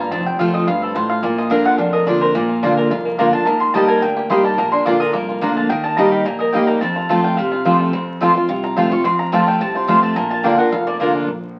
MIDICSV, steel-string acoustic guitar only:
0, 0, Header, 1, 2, 480
1, 0, Start_track
1, 0, Key_signature, -2, "major"
1, 0, Tempo, 279070
1, 198, Time_signature, 4, 2, 24, 8
1, 19940, End_track
2, 0, Start_track
2, 0, Title_t, "Steel-string acoustic guitar"
2, 0, Program_c, 0, 25
2, 0, Note_on_c, 0, 43, 89
2, 178, Note_off_c, 0, 43, 0
2, 205, Note_on_c, 0, 41, 91
2, 678, Note_on_c, 0, 53, 86
2, 687, Note_on_c, 0, 57, 98
2, 701, Note_on_c, 0, 60, 104
2, 706, Note_on_c, 0, 65, 95
2, 1116, Note_off_c, 0, 41, 0
2, 1135, Note_off_c, 0, 53, 0
2, 1140, Note_off_c, 0, 57, 0
2, 1147, Note_off_c, 0, 60, 0
2, 1149, Note_off_c, 0, 65, 0
2, 1165, Note_on_c, 0, 43, 94
2, 1619, Note_off_c, 0, 43, 0
2, 1643, Note_on_c, 0, 45, 90
2, 2098, Note_off_c, 0, 45, 0
2, 2121, Note_on_c, 0, 46, 91
2, 2575, Note_on_c, 0, 50, 86
2, 2590, Note_on_c, 0, 58, 97
2, 2595, Note_on_c, 0, 62, 94
2, 2604, Note_on_c, 0, 65, 99
2, 3035, Note_off_c, 0, 46, 0
2, 3045, Note_off_c, 0, 50, 0
2, 3052, Note_off_c, 0, 58, 0
2, 3055, Note_off_c, 0, 62, 0
2, 3059, Note_off_c, 0, 65, 0
2, 3067, Note_on_c, 0, 41, 90
2, 3555, Note_on_c, 0, 50, 82
2, 3573, Note_on_c, 0, 58, 88
2, 3576, Note_on_c, 0, 62, 78
2, 3586, Note_on_c, 0, 65, 91
2, 3988, Note_off_c, 0, 41, 0
2, 4015, Note_off_c, 0, 50, 0
2, 4024, Note_off_c, 0, 58, 0
2, 4026, Note_off_c, 0, 62, 0
2, 4030, Note_off_c, 0, 65, 0
2, 4040, Note_on_c, 0, 46, 95
2, 4521, Note_on_c, 0, 50, 88
2, 4530, Note_on_c, 0, 58, 89
2, 4540, Note_on_c, 0, 62, 82
2, 4547, Note_on_c, 0, 65, 97
2, 4955, Note_off_c, 0, 46, 0
2, 4979, Note_off_c, 0, 50, 0
2, 4983, Note_off_c, 0, 58, 0
2, 4988, Note_off_c, 0, 62, 0
2, 4991, Note_off_c, 0, 65, 0
2, 5008, Note_on_c, 0, 41, 99
2, 5482, Note_on_c, 0, 50, 89
2, 5495, Note_on_c, 0, 58, 89
2, 5501, Note_on_c, 0, 62, 92
2, 5513, Note_on_c, 0, 65, 99
2, 5700, Note_off_c, 0, 65, 0
2, 5721, Note_on_c, 0, 65, 62
2, 5722, Note_off_c, 0, 50, 0
2, 5728, Note_off_c, 0, 58, 0
2, 5731, Note_off_c, 0, 62, 0
2, 5755, Note_on_c, 0, 62, 47
2, 5920, Note_off_c, 0, 41, 0
2, 5948, Note_off_c, 0, 65, 0
2, 5965, Note_off_c, 0, 62, 0
2, 5967, Note_on_c, 0, 51, 94
2, 6437, Note_on_c, 0, 55, 90
2, 6451, Note_on_c, 0, 58, 102
2, 6464, Note_on_c, 0, 63, 88
2, 6472, Note_on_c, 0, 67, 100
2, 6879, Note_off_c, 0, 51, 0
2, 6897, Note_off_c, 0, 55, 0
2, 6904, Note_off_c, 0, 58, 0
2, 6911, Note_off_c, 0, 63, 0
2, 6915, Note_off_c, 0, 67, 0
2, 6922, Note_on_c, 0, 46, 95
2, 7389, Note_on_c, 0, 55, 90
2, 7404, Note_on_c, 0, 58, 82
2, 7412, Note_on_c, 0, 63, 85
2, 7425, Note_on_c, 0, 67, 95
2, 7837, Note_off_c, 0, 46, 0
2, 7854, Note_off_c, 0, 55, 0
2, 7861, Note_off_c, 0, 58, 0
2, 7865, Note_off_c, 0, 63, 0
2, 7871, Note_off_c, 0, 67, 0
2, 7879, Note_on_c, 0, 46, 102
2, 8356, Note_on_c, 0, 50, 93
2, 8370, Note_on_c, 0, 58, 101
2, 8379, Note_on_c, 0, 62, 88
2, 8390, Note_on_c, 0, 65, 100
2, 8796, Note_off_c, 0, 46, 0
2, 8817, Note_off_c, 0, 50, 0
2, 8824, Note_off_c, 0, 58, 0
2, 8829, Note_off_c, 0, 62, 0
2, 8833, Note_on_c, 0, 41, 95
2, 8834, Note_off_c, 0, 65, 0
2, 9310, Note_on_c, 0, 50, 84
2, 9318, Note_on_c, 0, 58, 92
2, 9331, Note_on_c, 0, 62, 92
2, 9343, Note_on_c, 0, 65, 91
2, 9753, Note_off_c, 0, 41, 0
2, 9774, Note_off_c, 0, 50, 0
2, 9778, Note_off_c, 0, 58, 0
2, 9785, Note_off_c, 0, 62, 0
2, 9791, Note_off_c, 0, 65, 0
2, 9801, Note_on_c, 0, 51, 94
2, 10275, Note_on_c, 0, 55, 93
2, 10293, Note_on_c, 0, 58, 88
2, 10300, Note_on_c, 0, 63, 102
2, 10306, Note_on_c, 0, 67, 100
2, 10717, Note_off_c, 0, 51, 0
2, 10737, Note_off_c, 0, 55, 0
2, 10746, Note_off_c, 0, 58, 0
2, 10749, Note_off_c, 0, 63, 0
2, 10753, Note_off_c, 0, 67, 0
2, 10763, Note_on_c, 0, 46, 94
2, 11241, Note_on_c, 0, 55, 86
2, 11257, Note_on_c, 0, 58, 81
2, 11265, Note_on_c, 0, 63, 80
2, 11277, Note_on_c, 0, 67, 90
2, 11679, Note_off_c, 0, 46, 0
2, 11700, Note_off_c, 0, 55, 0
2, 11708, Note_off_c, 0, 58, 0
2, 11712, Note_off_c, 0, 63, 0
2, 11719, Note_off_c, 0, 67, 0
2, 11737, Note_on_c, 0, 41, 90
2, 12197, Note_on_c, 0, 53, 82
2, 12217, Note_on_c, 0, 57, 90
2, 12223, Note_on_c, 0, 60, 88
2, 12235, Note_on_c, 0, 65, 99
2, 12646, Note_off_c, 0, 41, 0
2, 12659, Note_off_c, 0, 53, 0
2, 12669, Note_off_c, 0, 57, 0
2, 12672, Note_off_c, 0, 60, 0
2, 12677, Note_off_c, 0, 65, 0
2, 12702, Note_on_c, 0, 48, 93
2, 13161, Note_on_c, 0, 53, 81
2, 13173, Note_on_c, 0, 57, 89
2, 13182, Note_on_c, 0, 60, 86
2, 13192, Note_on_c, 0, 65, 96
2, 13608, Note_off_c, 0, 48, 0
2, 13620, Note_off_c, 0, 53, 0
2, 13627, Note_off_c, 0, 57, 0
2, 13631, Note_off_c, 0, 60, 0
2, 13636, Note_off_c, 0, 65, 0
2, 13643, Note_on_c, 0, 41, 97
2, 14114, Note_on_c, 0, 53, 89
2, 14130, Note_on_c, 0, 57, 96
2, 14134, Note_on_c, 0, 60, 92
2, 14149, Note_on_c, 0, 65, 102
2, 14343, Note_off_c, 0, 65, 0
2, 14360, Note_off_c, 0, 53, 0
2, 14363, Note_on_c, 0, 65, 57
2, 14368, Note_off_c, 0, 57, 0
2, 14370, Note_off_c, 0, 60, 0
2, 14400, Note_on_c, 0, 60, 47
2, 14559, Note_off_c, 0, 41, 0
2, 14591, Note_off_c, 0, 65, 0
2, 14597, Note_on_c, 0, 48, 93
2, 14609, Note_off_c, 0, 60, 0
2, 15078, Note_on_c, 0, 53, 77
2, 15090, Note_on_c, 0, 57, 87
2, 15098, Note_on_c, 0, 60, 97
2, 15111, Note_on_c, 0, 65, 93
2, 15307, Note_off_c, 0, 65, 0
2, 15321, Note_off_c, 0, 53, 0
2, 15327, Note_off_c, 0, 57, 0
2, 15328, Note_on_c, 0, 65, 57
2, 15332, Note_off_c, 0, 60, 0
2, 15360, Note_on_c, 0, 60, 52
2, 15515, Note_off_c, 0, 48, 0
2, 15553, Note_off_c, 0, 65, 0
2, 15563, Note_on_c, 0, 41, 98
2, 15569, Note_off_c, 0, 60, 0
2, 16035, Note_on_c, 0, 53, 94
2, 16041, Note_on_c, 0, 57, 88
2, 16052, Note_on_c, 0, 60, 100
2, 16062, Note_on_c, 0, 65, 99
2, 16478, Note_off_c, 0, 41, 0
2, 16497, Note_off_c, 0, 53, 0
2, 16500, Note_off_c, 0, 57, 0
2, 16505, Note_off_c, 0, 60, 0
2, 16510, Note_off_c, 0, 65, 0
2, 16529, Note_on_c, 0, 48, 97
2, 16987, Note_on_c, 0, 53, 82
2, 17000, Note_on_c, 0, 57, 97
2, 17008, Note_on_c, 0, 60, 88
2, 17018, Note_on_c, 0, 65, 93
2, 17440, Note_off_c, 0, 48, 0
2, 17452, Note_off_c, 0, 53, 0
2, 17459, Note_off_c, 0, 57, 0
2, 17463, Note_off_c, 0, 60, 0
2, 17468, Note_off_c, 0, 65, 0
2, 17477, Note_on_c, 0, 46, 98
2, 17946, Note_on_c, 0, 50, 90
2, 17964, Note_on_c, 0, 58, 91
2, 17970, Note_on_c, 0, 62, 93
2, 17984, Note_on_c, 0, 65, 95
2, 18181, Note_off_c, 0, 65, 0
2, 18194, Note_off_c, 0, 50, 0
2, 18202, Note_on_c, 0, 65, 64
2, 18203, Note_off_c, 0, 58, 0
2, 18206, Note_off_c, 0, 62, 0
2, 18237, Note_on_c, 0, 62, 50
2, 18393, Note_off_c, 0, 46, 0
2, 18428, Note_off_c, 0, 65, 0
2, 18444, Note_on_c, 0, 41, 93
2, 18446, Note_off_c, 0, 62, 0
2, 18918, Note_on_c, 0, 50, 85
2, 18932, Note_on_c, 0, 58, 89
2, 18947, Note_on_c, 0, 62, 81
2, 18952, Note_on_c, 0, 65, 92
2, 19355, Note_off_c, 0, 41, 0
2, 19376, Note_off_c, 0, 50, 0
2, 19383, Note_off_c, 0, 58, 0
2, 19390, Note_off_c, 0, 62, 0
2, 19393, Note_off_c, 0, 65, 0
2, 19940, End_track
0, 0, End_of_file